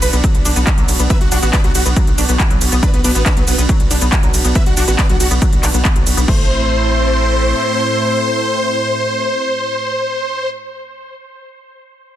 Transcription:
Already playing: supersaw synth B3 D4 F#4
0.02 analog synth bass B1, supersaw synth B4, open hi-hat, ride, shaker
0.13 analog synth bass B1, synth arpeggio sound B3, closed hi-hat, shaker
0.24 synth arpeggio sound F#3, kick, closed hi-hat, shaker
0.35 analog synth bass B1, closed hi-hat
0.45 analog synth bass B1, synth arpeggio sound D4, open hi-hat, ride, shaker
0.56 analog synth bass B1, synth arpeggio sound B3, closed hi-hat, shaker
0.67 kick, clap, closed hi-hat, shaker
0.78 analog synth bass B1, synth arpeggio sound F#3, closed hi-hat
0.88 analog synth bass B1, open hi-hat, ride, shaker
0.99 analog synth bass B1, synth arpeggio sound B3, closed hi-hat, shaker
1.10 synth arpeggio sound F#3, supersaw synth B4 E5, kick, closed hi-hat, shaker
1.21 analog synth bass B1, supersaw synth F#4, closed hi-hat
1.32 analog synth bass B1, synth arpeggio sound D4, supersaw synth F#4, open hi-hat, ride, shaker
1.43 analog synth bass A1, synth arpeggio sound B3, supersaw synth F#4, closed hi-hat, shaker
1.53 supersaw synth B4 D5, kick, clap, closed hi-hat, shaker
1.64 analog synth bass B1, synth arpeggio sound F#3, supersaw synth F#4, closed hi-hat
1.75 analog synth bass B1, supersaw synth F#4, open hi-hat, ride, shaker
1.86 analog synth bass B1, synth arpeggio sound B3, closed hi-hat, shaker
1.96 synth arpeggio sound F#3, kick, closed hi-hat, shaker
2.07 analog synth bass B1, closed hi-hat
2.18 analog synth bass B1, synth arpeggio sound D4, open hi-hat, ride, shaker
2.29 analog synth bass B1, synth arpeggio sound B3, closed hi-hat, shaker
2.40 kick, clap, closed hi-hat, shaker
2.50 analog synth bass B1, synth arpeggio sound F#3, closed hi-hat
2.61 analog synth bass B1, open hi-hat, ride, shaker
2.72 analog synth bass B1, synth arpeggio sound B3, closed hi-hat, shaker
2.83 synth arpeggio sound F#3, supersaw synth D4 B4, kick, closed hi-hat, shaker
2.94 analog synth bass B1, supersaw synth B3, closed hi-hat
3.04 analog synth bass B1, supersaw synth B3, synth arpeggio sound D4, open hi-hat, ride, shaker
3.15 analog synth bass A1, supersaw synth B3, synth arpeggio sound B3, closed hi-hat, shaker
3.26 supersaw synth D4 B4, kick, clap, closed hi-hat, shaker
3.37 analog synth bass B1, synth arpeggio sound F#3, supersaw synth B3, closed hi-hat
3.48 analog synth bass B1, supersaw synth B3, open hi-hat, ride, shaker
3.58 analog synth bass B1, synth arpeggio sound B3, closed hi-hat, shaker
3.69 synth arpeggio sound F#3, kick, closed hi-hat, shaker
3.80 analog synth bass B1, closed hi-hat
3.91 analog synth bass B1, synth arpeggio sound D4, open hi-hat, ride, shaker
4.01 analog synth bass B1, synth arpeggio sound B3, closed hi-hat, shaker
4.12 kick, clap, closed hi-hat, shaker
4.23 analog synth bass B1, synth arpeggio sound F#3, closed hi-hat
4.34 analog synth bass B1, open hi-hat, ride, shaker
4.45 analog synth bass B1, synth arpeggio sound B3, closed hi-hat, shaker
4.55 synth arpeggio sound F#3, supersaw synth B4 E5, kick, closed hi-hat, shaker
4.66 analog synth bass B1, supersaw synth F#4, closed hi-hat
4.77 analog synth bass B1, synth arpeggio sound D4, supersaw synth F#4, open hi-hat, ride, shaker
4.88 analog synth bass A1, synth arpeggio sound B3, supersaw synth F#4, closed hi-hat, shaker
4.99 supersaw synth B4 D5, kick, clap, closed hi-hat, shaker
5.09 analog synth bass B1, synth arpeggio sound F#3, supersaw synth F#4, closed hi-hat
5.20 analog synth bass B1, supersaw synth F#4, open hi-hat, ride, shaker
5.31 analog synth bass B1, synth arpeggio sound B3, closed hi-hat, shaker
5.42 synth arpeggio sound F#3, kick, closed hi-hat, shaker
5.53 analog synth bass B1, closed hi-hat
5.63 analog synth bass B1, synth arpeggio sound D4, clap, open hi-hat, ride, shaker
5.74 analog synth bass B1, synth arpeggio sound B3, closed hi-hat, shaker
5.85 kick, clap, closed hi-hat, shaker
5.96 analog synth bass B1, synth arpeggio sound F#3, closed hi-hat
6.06 analog synth bass B1, open hi-hat, ride, shaker
6.17 analog synth bass B1, synth arpeggio sound B3, closed hi-hat, shaker
6.28 analog synth bass A1, supersaw synth A2 A3 C4 E4 C5, synth arpeggio sound A3, kick, crash

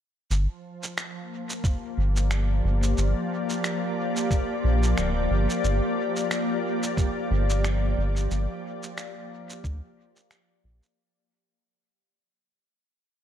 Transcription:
0.30 analog synth bass G1, ambient pad F3, shaker
0.83 shaker
0.98 ambient pad A#3, finger snap, shaker
1.50 shaker
1.64 ambient pad G4, kick, shaker
1.97 analog synth bass G1
2.06 ambient pad D5
2.16 shaker
2.31 finger snap, shaker
2.64 analog synth bass G1
2.83 shaker
2.98 analog synth bass G1, shaker
3.50 shaker
3.64 finger snap, shaker
4.16 shaker
4.31 kick, shaker
4.64 analog synth bass A#1
4.83 shaker
4.97 analog synth bass D1, finger snap, shaker
5.30 analog synth bass G1
5.50 shaker
5.64 analog synth bass G1, shaker
6.16 shaker
6.31 finger snap, shaker
6.83 shaker
6.97 kick, shaker
7.31 analog synth bass G1
7.50 shaker
7.64 finger snap, shaker
7.98 analog synth bass G1
8.16 shaker
8.31 analog synth bass G1, shaker
8.83 shaker
8.98 finger snap, shaker
9.50 shaker
9.64 analog synth bass D2, kick, shaker
10.16 shaker
10.31 finger snap, shaker
10.64 analog synth bass A#1
10.83 shaker

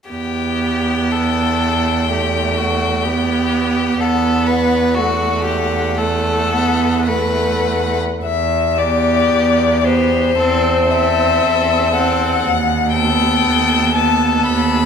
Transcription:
0.10 cello E2, viola B3, violin G4 G5
1.12 violin A4
2.11 viola A3, violin G4
2.57 violin F#4
3.03 viola B3, violin G4
4.00 cello E2, viola B3, violin A4 F#5
4.47 violin B4
4.95 viola A3, violin F#4 F#5
5.46 violin G4
5.98 viola A3, violin A4 F#5
6.53 viola B3
7.07 viola A3, violin B4 F#5
8.23 cello E2, violin E5
8.77 viola B3, violin G4 D5
9.30 cello E2
9.85 viola B3, violin G4 C5
10.36 cello E2, viola C4, violin A4
10.90 viola C4, violin A4 E5
11.42 cello E2
11.93 viola C4, violin A4 F#5
12.44 cello D#2
12.93 viola B3, violin A4 G5
13.45 cello D#2
13.95 viola B3, violin A4 A5
14.46 cello D#2, violin B5

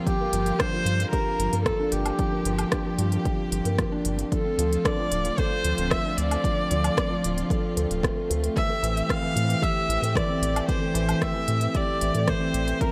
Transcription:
Already playing: string section G3 A#3 F4
0.06 string section D3, felt piano F3, viola G4, kick, closed hi-hat
0.20 felt piano A#3
0.33 analog synth bass G1, felt piano F3, closed hi-hat
0.46 closed hi-hat
0.59 felt piano D4, viola C5, kick, cross-stick, closed hi-hat
0.73 felt piano F3
0.85 analog synth bass G2, felt piano F4, closed hi-hat
1.00 felt piano F3, closed hi-hat
1.11 felt piano G4, viola A#4, kick, closed hi-hat
1.39 analog synth bass G1, felt piano F3, closed hi-hat
1.53 analog synth bass G2, felt piano A#3, closed hi-hat
1.64 felt piano F3, viola A4, kick, cross-stick, closed hi-hat
1.80 felt piano D4
1.91 analog synth bass G1, viola G4, closed hi-hat
2.06 felt piano F3, closed hi-hat, low woodblock
2.19 felt piano F3, string section G4, kick, closed hi-hat
2.32 felt piano A#3
2.45 analog synth bass G1, felt piano F3, closed hi-hat
2.59 closed hi-hat, low woodblock
2.72 felt piano D4, kick, cross-stick, closed hi-hat
2.86 felt piano F3
2.98 analog synth bass G2, felt piano F4, closed hi-hat
3.12 felt piano F3, closed hi-hat
3.25 felt piano G4, kick, closed hi-hat
3.52 analog synth bass G1, felt piano F3, closed hi-hat
3.65 analog synth bass G2, felt piano A#3, closed hi-hat
3.78 felt piano F3, kick, cross-stick, closed hi-hat
3.92 felt piano D4
4.05 analog synth bass G1, closed hi-hat
4.19 felt piano F3, closed hi-hat
4.32 string section D3 A3 C4 F4, felt piano F3, viola A4, kick, closed hi-hat
4.45 felt piano C4
4.58 analog synth bass D2, felt piano F3, closed hi-hat
4.73 closed hi-hat
4.85 felt piano D4, viola D5, kick, cross-stick, closed hi-hat
4.99 felt piano F3
5.12 analog synth bass D1, felt piano F4, closed hi-hat
5.25 felt piano F3, closed hi-hat
5.38 felt piano A4, viola C5, kick, closed hi-hat
5.64 analog synth bass D2, felt piano F3, closed hi-hat
5.78 analog synth bass D1, felt piano C4, closed hi-hat
5.90 felt piano F3, viola E5, kick, cross-stick, closed hi-hat
6.06 felt piano D4
6.17 analog synth bass D2, viola D5, closed hi-hat
6.31 felt piano F3, closed hi-hat, low woodblock
6.44 felt piano F3, kick, closed hi-hat
6.58 felt piano C4
6.70 analog synth bass D2, felt piano F3, closed hi-hat
6.84 closed hi-hat, low woodblock
6.97 felt piano D4, kick, cross-stick, closed hi-hat
7.11 felt piano F3
7.24 analog synth bass D1, felt piano F4, closed hi-hat
7.37 felt piano F3, closed hi-hat
7.50 felt piano A4, kick, closed hi-hat
7.77 analog synth bass D2, felt piano A4, closed hi-hat
7.90 analog synth bass D1, closed hi-hat
8.03 felt piano A3, kick, cross-stick, closed hi-hat
8.17 felt piano A4
8.30 analog synth bass D2, felt piano A3, closed hi-hat
8.43 felt piano A3, closed hi-hat
8.56 felt piano E3, string section E3 G4, viola E5, kick, closed hi-hat
8.70 felt piano A3
8.82 analog synth bass A1, felt piano E3, closed hi-hat
8.97 closed hi-hat
9.09 felt piano C4, viola F5, kick, cross-stick, closed hi-hat
9.22 felt piano E3
9.35 analog synth bass A2, felt piano E4, closed hi-hat
9.48 felt piano E3, closed hi-hat
9.62 felt piano G4, viola E5, kick, closed hi-hat
9.89 analog synth bass A1, felt piano E3, closed hi-hat
10.02 analog synth bass A2, felt piano A3, closed hi-hat
10.15 felt piano E3, viola D5, kick, cross-stick, closed hi-hat
10.28 felt piano C4
10.42 analog synth bass A1, closed hi-hat
10.55 felt piano E3, closed hi-hat, low woodblock
10.68 felt piano E3, viola C5, kick, closed hi-hat
10.81 felt piano A3
10.94 analog synth bass A1, felt piano E3, closed hi-hat
11.09 closed hi-hat, low woodblock
11.22 viola E5, kick, cross-stick, closed hi-hat
11.34 felt piano E3
11.47 analog synth bass A2, felt piano E4, closed hi-hat
11.61 felt piano E3, closed hi-hat
11.74 felt piano G4, viola D5, kick, closed hi-hat
12.01 analog synth bass A1, felt piano E3, closed hi-hat
12.15 analog synth bass A2, felt piano A3, closed hi-hat
12.28 felt piano E3, viola C5, kick, cross-stick, closed hi-hat
12.41 felt piano C4
12.54 analog synth bass A1, closed hi-hat
12.67 felt piano E3, closed hi-hat
12.80 string section F3 A#3, felt piano F3, viola A#4, kick, closed hi-hat

